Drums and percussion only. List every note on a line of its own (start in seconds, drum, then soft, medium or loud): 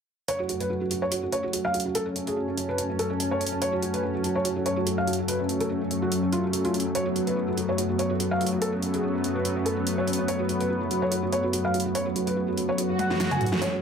0.28 closed hi-hat medium
0.49 closed hi-hat soft
0.60 closed hi-hat soft
0.91 closed hi-hat medium
1.12 closed hi-hat medium
1.32 closed hi-hat soft
1.53 closed hi-hat medium
1.74 closed hi-hat soft
1.80 closed hi-hat medium
1.95 closed hi-hat medium
2.16 closed hi-hat medium
2.27 closed hi-hat soft
2.57 closed hi-hat medium
2.78 closed hi-hat medium
2.99 closed hi-hat soft
3.20 closed hi-hat medium
3.41 closed hi-hat soft
3.46 closed hi-hat medium
3.62 closed hi-hat medium
3.83 closed hi-hat soft
3.94 closed hi-hat soft
4.24 closed hi-hat soft
4.45 closed hi-hat medium
4.66 closed hi-hat soft
4.87 closed hi-hat medium
5.07 closed hi-hat soft
5.13 closed hi-hat medium
5.28 closed hi-hat medium
5.49 closed hi-hat soft
5.61 closed hi-hat soft
5.91 closed hi-hat soft
6.12 closed hi-hat medium
6.32 closed hi-hat soft
6.53 closed hi-hat medium
6.65 closed hi-hat soft
6.74 closed hi-hat soft
6.80 closed hi-hat medium
6.95 closed hi-hat medium
7.16 closed hi-hat soft
7.27 closed hi-hat soft
7.57 closed hi-hat soft
7.78 closed hi-hat medium
7.99 closed hi-hat soft
8.20 closed hi-hat medium
8.41 closed hi-hat soft
8.46 closed hi-hat medium
8.62 closed hi-hat medium
8.82 closed hi-hat soft
8.94 closed hi-hat soft
9.24 closed hi-hat soft
9.45 closed hi-hat medium
9.66 closed hi-hat soft
9.87 closed hi-hat medium
10.07 closed hi-hat soft
10.13 closed hi-hat medium
10.28 closed hi-hat medium
10.49 closed hi-hat soft
10.61 closed hi-hat soft
10.91 closed hi-hat soft
11.12 closed hi-hat medium
11.32 closed hi-hat soft
11.53 closed hi-hat medium
11.74 closed hi-hat soft
11.80 closed hi-hat medium
11.95 closed hi-hat medium
12.16 closed hi-hat medium
12.27 closed hi-hat soft
12.57 closed hi-hat soft
12.78 closed hi-hat medium
12.99 closed hi-hat soft
12.99 high tom medium
13.10 snare medium
13.20 snare medium
13.20 closed hi-hat medium
13.31 closed hi-hat soft
13.31 mid tom medium
13.41 closed hi-hat soft
13.41 mid tom medium
13.46 closed hi-hat medium
13.52 snare medium
13.62 snare soft
13.62 closed hi-hat medium